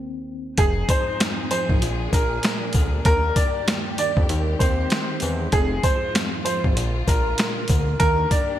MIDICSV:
0, 0, Header, 1, 6, 480
1, 0, Start_track
1, 0, Tempo, 618557
1, 452, Time_signature, 4, 2, 24, 8
1, 6668, End_track
2, 0, Start_track
2, 0, Title_t, "Upright piano"
2, 0, Program_c, 0, 0
2, 450, Note_on_c, 0, 68, 107
2, 667, Note_off_c, 0, 68, 0
2, 697, Note_on_c, 0, 72, 81
2, 910, Note_off_c, 0, 72, 0
2, 1171, Note_on_c, 0, 72, 80
2, 1302, Note_off_c, 0, 72, 0
2, 1659, Note_on_c, 0, 70, 70
2, 2344, Note_off_c, 0, 70, 0
2, 2373, Note_on_c, 0, 70, 118
2, 2588, Note_off_c, 0, 70, 0
2, 2610, Note_on_c, 0, 74, 86
2, 2827, Note_off_c, 0, 74, 0
2, 3094, Note_on_c, 0, 74, 84
2, 3224, Note_off_c, 0, 74, 0
2, 3564, Note_on_c, 0, 72, 72
2, 4257, Note_off_c, 0, 72, 0
2, 4287, Note_on_c, 0, 68, 111
2, 4505, Note_off_c, 0, 68, 0
2, 4529, Note_on_c, 0, 72, 87
2, 4746, Note_off_c, 0, 72, 0
2, 5004, Note_on_c, 0, 72, 76
2, 5138, Note_off_c, 0, 72, 0
2, 5496, Note_on_c, 0, 70, 72
2, 6183, Note_off_c, 0, 70, 0
2, 6204, Note_on_c, 0, 70, 119
2, 6423, Note_off_c, 0, 70, 0
2, 6449, Note_on_c, 0, 74, 82
2, 6666, Note_off_c, 0, 74, 0
2, 6668, End_track
3, 0, Start_track
3, 0, Title_t, "String section"
3, 0, Program_c, 1, 48
3, 448, Note_on_c, 1, 60, 70
3, 448, Note_on_c, 1, 63, 78
3, 449, Note_on_c, 1, 53, 88
3, 449, Note_on_c, 1, 68, 89
3, 1400, Note_off_c, 1, 60, 0
3, 1400, Note_off_c, 1, 63, 0
3, 1407, Note_on_c, 1, 58, 78
3, 1407, Note_on_c, 1, 62, 73
3, 2351, Note_off_c, 1, 53, 0
3, 2351, Note_off_c, 1, 68, 0
3, 2369, Note_on_c, 1, 51, 84
3, 2369, Note_on_c, 1, 67, 90
3, 3310, Note_off_c, 1, 58, 0
3, 3310, Note_off_c, 1, 62, 0
3, 3330, Note_on_c, 1, 56, 75
3, 3331, Note_on_c, 1, 60, 74
3, 4271, Note_off_c, 1, 67, 0
3, 4282, Note_off_c, 1, 60, 0
3, 4292, Note_on_c, 1, 60, 70
3, 4292, Note_on_c, 1, 65, 92
3, 5221, Note_off_c, 1, 51, 0
3, 5242, Note_off_c, 1, 60, 0
3, 5246, Note_on_c, 1, 50, 84
3, 5247, Note_on_c, 1, 58, 74
3, 6182, Note_off_c, 1, 56, 0
3, 6193, Note_off_c, 1, 65, 0
3, 6199, Note_off_c, 1, 50, 0
3, 6212, Note_on_c, 1, 51, 83
3, 6212, Note_on_c, 1, 62, 77
3, 6212, Note_on_c, 1, 67, 82
3, 6668, Note_off_c, 1, 51, 0
3, 6668, Note_off_c, 1, 58, 0
3, 6668, Note_off_c, 1, 62, 0
3, 6668, Note_off_c, 1, 67, 0
3, 6668, End_track
4, 0, Start_track
4, 0, Title_t, "Tine electric piano"
4, 0, Program_c, 2, 4
4, 0, Control_c, 2, 64, 127
4, 0, Note_on_c, 2, 39, 89
4, 0, Note_on_c, 2, 60, 83
4, 450, Note_on_c, 2, 41, 96
4, 453, Note_off_c, 2, 39, 0
4, 454, Note_off_c, 2, 60, 0
4, 462, Control_c, 2, 64, 0
4, 589, Control_c, 2, 64, 127
4, 691, Note_on_c, 2, 44, 84
4, 921, Note_off_c, 2, 41, 0
4, 931, Note_on_c, 2, 41, 83
4, 1171, Note_on_c, 2, 53, 78
4, 1407, Note_on_c, 2, 46, 95
4, 1411, Note_off_c, 2, 41, 0
4, 1411, Note_off_c, 2, 44, 0
4, 1411, Note_off_c, 2, 53, 0
4, 1423, Control_c, 2, 64, 0
4, 1561, Control_c, 2, 64, 127
4, 1650, Note_on_c, 2, 70, 88
4, 2369, Note_off_c, 2, 46, 0
4, 2371, Note_off_c, 2, 70, 0
4, 2375, Note_on_c, 2, 39, 94
4, 2381, Control_c, 2, 64, 0
4, 2528, Control_c, 2, 64, 127
4, 2614, Note_on_c, 2, 43, 81
4, 2843, Note_off_c, 2, 39, 0
4, 2852, Note_on_c, 2, 39, 79
4, 3092, Note_on_c, 2, 51, 81
4, 3327, Note_off_c, 2, 51, 0
4, 3332, Note_off_c, 2, 39, 0
4, 3333, Note_off_c, 2, 43, 0
4, 3336, Note_on_c, 2, 51, 90
4, 3341, Control_c, 2, 64, 0
4, 3457, Control_c, 2, 64, 127
4, 3579, Note_on_c, 2, 60, 86
4, 4290, Note_on_c, 2, 41, 100
4, 4294, Note_off_c, 2, 51, 0
4, 4295, Note_off_c, 2, 60, 0
4, 4301, Control_c, 2, 64, 0
4, 4458, Control_c, 2, 64, 127
4, 4531, Note_on_c, 2, 44, 84
4, 4761, Note_off_c, 2, 41, 0
4, 4770, Note_on_c, 2, 41, 82
4, 5013, Note_on_c, 2, 53, 82
4, 5248, Note_on_c, 2, 46, 95
4, 5251, Note_off_c, 2, 41, 0
4, 5251, Note_off_c, 2, 44, 0
4, 5252, Note_off_c, 2, 53, 0
4, 5260, Control_c, 2, 64, 0
4, 5409, Control_c, 2, 64, 127
4, 5490, Note_on_c, 2, 70, 89
4, 6210, Note_off_c, 2, 46, 0
4, 6211, Note_off_c, 2, 70, 0
4, 6215, Note_on_c, 2, 39, 98
4, 6220, Control_c, 2, 64, 0
4, 6358, Control_c, 2, 64, 127
4, 6456, Note_on_c, 2, 43, 82
4, 6668, Note_off_c, 2, 39, 0
4, 6668, Note_off_c, 2, 43, 0
4, 6668, End_track
5, 0, Start_track
5, 0, Title_t, "Analog synth bass"
5, 0, Program_c, 3, 38
5, 451, Note_on_c, 3, 29, 107
5, 655, Note_off_c, 3, 29, 0
5, 1316, Note_on_c, 3, 32, 94
5, 1397, Note_off_c, 3, 32, 0
5, 1414, Note_on_c, 3, 34, 102
5, 1617, Note_off_c, 3, 34, 0
5, 1652, Note_on_c, 3, 34, 94
5, 1856, Note_off_c, 3, 34, 0
5, 2131, Note_on_c, 3, 38, 97
5, 2335, Note_off_c, 3, 38, 0
5, 2371, Note_on_c, 3, 39, 115
5, 2575, Note_off_c, 3, 39, 0
5, 3235, Note_on_c, 3, 41, 95
5, 3316, Note_off_c, 3, 41, 0
5, 3333, Note_on_c, 3, 39, 107
5, 3536, Note_off_c, 3, 39, 0
5, 3572, Note_on_c, 3, 39, 95
5, 3775, Note_off_c, 3, 39, 0
5, 4053, Note_on_c, 3, 40, 106
5, 4256, Note_off_c, 3, 40, 0
5, 4291, Note_on_c, 3, 29, 107
5, 4495, Note_off_c, 3, 29, 0
5, 5156, Note_on_c, 3, 32, 88
5, 5237, Note_off_c, 3, 32, 0
5, 5252, Note_on_c, 3, 34, 102
5, 5456, Note_off_c, 3, 34, 0
5, 5493, Note_on_c, 3, 34, 94
5, 5696, Note_off_c, 3, 34, 0
5, 5973, Note_on_c, 3, 38, 94
5, 6176, Note_off_c, 3, 38, 0
5, 6211, Note_on_c, 3, 39, 117
5, 6415, Note_off_c, 3, 39, 0
5, 6668, End_track
6, 0, Start_track
6, 0, Title_t, "Drums"
6, 447, Note_on_c, 9, 42, 88
6, 450, Note_on_c, 9, 36, 109
6, 450, Note_on_c, 9, 83, 52
6, 524, Note_off_c, 9, 42, 0
6, 527, Note_off_c, 9, 83, 0
6, 528, Note_off_c, 9, 36, 0
6, 688, Note_on_c, 9, 42, 73
6, 689, Note_on_c, 9, 36, 94
6, 692, Note_on_c, 9, 83, 73
6, 766, Note_off_c, 9, 36, 0
6, 766, Note_off_c, 9, 42, 0
6, 770, Note_off_c, 9, 83, 0
6, 934, Note_on_c, 9, 42, 103
6, 934, Note_on_c, 9, 83, 51
6, 935, Note_on_c, 9, 40, 88
6, 939, Note_on_c, 9, 38, 110
6, 1012, Note_off_c, 9, 42, 0
6, 1012, Note_off_c, 9, 83, 0
6, 1013, Note_off_c, 9, 40, 0
6, 1017, Note_off_c, 9, 38, 0
6, 1170, Note_on_c, 9, 42, 72
6, 1170, Note_on_c, 9, 83, 74
6, 1247, Note_off_c, 9, 83, 0
6, 1248, Note_off_c, 9, 42, 0
6, 1315, Note_on_c, 9, 36, 90
6, 1393, Note_off_c, 9, 36, 0
6, 1411, Note_on_c, 9, 83, 49
6, 1412, Note_on_c, 9, 42, 88
6, 1489, Note_off_c, 9, 83, 0
6, 1490, Note_off_c, 9, 42, 0
6, 1651, Note_on_c, 9, 83, 72
6, 1652, Note_on_c, 9, 36, 91
6, 1662, Note_on_c, 9, 42, 79
6, 1728, Note_off_c, 9, 83, 0
6, 1729, Note_off_c, 9, 36, 0
6, 1739, Note_off_c, 9, 42, 0
6, 1886, Note_on_c, 9, 42, 83
6, 1891, Note_on_c, 9, 83, 52
6, 1898, Note_on_c, 9, 40, 96
6, 1901, Note_on_c, 9, 38, 116
6, 1963, Note_off_c, 9, 42, 0
6, 1969, Note_off_c, 9, 83, 0
6, 1975, Note_off_c, 9, 40, 0
6, 1979, Note_off_c, 9, 38, 0
6, 2116, Note_on_c, 9, 42, 72
6, 2129, Note_on_c, 9, 83, 75
6, 2131, Note_on_c, 9, 36, 93
6, 2194, Note_off_c, 9, 42, 0
6, 2207, Note_off_c, 9, 83, 0
6, 2208, Note_off_c, 9, 36, 0
6, 2367, Note_on_c, 9, 42, 85
6, 2369, Note_on_c, 9, 83, 55
6, 2370, Note_on_c, 9, 36, 109
6, 2445, Note_off_c, 9, 42, 0
6, 2447, Note_off_c, 9, 83, 0
6, 2448, Note_off_c, 9, 36, 0
6, 2608, Note_on_c, 9, 36, 91
6, 2608, Note_on_c, 9, 42, 76
6, 2611, Note_on_c, 9, 83, 74
6, 2685, Note_off_c, 9, 42, 0
6, 2686, Note_off_c, 9, 36, 0
6, 2689, Note_off_c, 9, 83, 0
6, 2853, Note_on_c, 9, 42, 98
6, 2853, Note_on_c, 9, 83, 50
6, 2854, Note_on_c, 9, 40, 87
6, 2858, Note_on_c, 9, 38, 108
6, 2930, Note_off_c, 9, 83, 0
6, 2931, Note_off_c, 9, 42, 0
6, 2932, Note_off_c, 9, 40, 0
6, 2935, Note_off_c, 9, 38, 0
6, 3088, Note_on_c, 9, 83, 72
6, 3090, Note_on_c, 9, 42, 71
6, 3166, Note_off_c, 9, 83, 0
6, 3167, Note_off_c, 9, 42, 0
6, 3235, Note_on_c, 9, 36, 96
6, 3312, Note_off_c, 9, 36, 0
6, 3331, Note_on_c, 9, 42, 89
6, 3331, Note_on_c, 9, 83, 46
6, 3409, Note_off_c, 9, 42, 0
6, 3409, Note_off_c, 9, 83, 0
6, 3571, Note_on_c, 9, 36, 95
6, 3571, Note_on_c, 9, 83, 69
6, 3581, Note_on_c, 9, 42, 79
6, 3649, Note_off_c, 9, 36, 0
6, 3649, Note_off_c, 9, 83, 0
6, 3658, Note_off_c, 9, 42, 0
6, 3804, Note_on_c, 9, 42, 83
6, 3810, Note_on_c, 9, 83, 52
6, 3816, Note_on_c, 9, 40, 96
6, 3820, Note_on_c, 9, 38, 125
6, 3882, Note_off_c, 9, 42, 0
6, 3888, Note_off_c, 9, 83, 0
6, 3894, Note_off_c, 9, 40, 0
6, 3898, Note_off_c, 9, 38, 0
6, 4036, Note_on_c, 9, 42, 70
6, 4049, Note_on_c, 9, 83, 75
6, 4113, Note_off_c, 9, 42, 0
6, 4127, Note_off_c, 9, 83, 0
6, 4285, Note_on_c, 9, 42, 85
6, 4288, Note_on_c, 9, 83, 53
6, 4290, Note_on_c, 9, 36, 113
6, 4363, Note_off_c, 9, 42, 0
6, 4366, Note_off_c, 9, 83, 0
6, 4368, Note_off_c, 9, 36, 0
6, 4528, Note_on_c, 9, 36, 92
6, 4528, Note_on_c, 9, 42, 73
6, 4531, Note_on_c, 9, 83, 74
6, 4606, Note_off_c, 9, 36, 0
6, 4606, Note_off_c, 9, 42, 0
6, 4609, Note_off_c, 9, 83, 0
6, 4773, Note_on_c, 9, 42, 102
6, 4774, Note_on_c, 9, 40, 88
6, 4774, Note_on_c, 9, 83, 53
6, 4778, Note_on_c, 9, 38, 112
6, 4851, Note_off_c, 9, 42, 0
6, 4851, Note_off_c, 9, 83, 0
6, 4852, Note_off_c, 9, 40, 0
6, 4856, Note_off_c, 9, 38, 0
6, 5008, Note_on_c, 9, 83, 73
6, 5010, Note_on_c, 9, 42, 73
6, 5086, Note_off_c, 9, 83, 0
6, 5088, Note_off_c, 9, 42, 0
6, 5156, Note_on_c, 9, 36, 95
6, 5233, Note_off_c, 9, 36, 0
6, 5251, Note_on_c, 9, 83, 49
6, 5252, Note_on_c, 9, 42, 88
6, 5328, Note_off_c, 9, 83, 0
6, 5330, Note_off_c, 9, 42, 0
6, 5490, Note_on_c, 9, 83, 67
6, 5492, Note_on_c, 9, 36, 97
6, 5502, Note_on_c, 9, 42, 78
6, 5568, Note_off_c, 9, 83, 0
6, 5570, Note_off_c, 9, 36, 0
6, 5580, Note_off_c, 9, 42, 0
6, 5726, Note_on_c, 9, 42, 84
6, 5730, Note_on_c, 9, 83, 50
6, 5738, Note_on_c, 9, 40, 99
6, 5741, Note_on_c, 9, 38, 121
6, 5803, Note_off_c, 9, 42, 0
6, 5808, Note_off_c, 9, 83, 0
6, 5815, Note_off_c, 9, 40, 0
6, 5819, Note_off_c, 9, 38, 0
6, 5958, Note_on_c, 9, 42, 71
6, 5969, Note_on_c, 9, 83, 74
6, 5972, Note_on_c, 9, 36, 97
6, 6035, Note_off_c, 9, 42, 0
6, 6047, Note_off_c, 9, 83, 0
6, 6049, Note_off_c, 9, 36, 0
6, 6207, Note_on_c, 9, 42, 85
6, 6209, Note_on_c, 9, 83, 53
6, 6211, Note_on_c, 9, 36, 109
6, 6284, Note_off_c, 9, 42, 0
6, 6287, Note_off_c, 9, 83, 0
6, 6288, Note_off_c, 9, 36, 0
6, 6448, Note_on_c, 9, 42, 72
6, 6449, Note_on_c, 9, 36, 94
6, 6451, Note_on_c, 9, 83, 74
6, 6526, Note_off_c, 9, 42, 0
6, 6527, Note_off_c, 9, 36, 0
6, 6529, Note_off_c, 9, 83, 0
6, 6668, End_track
0, 0, End_of_file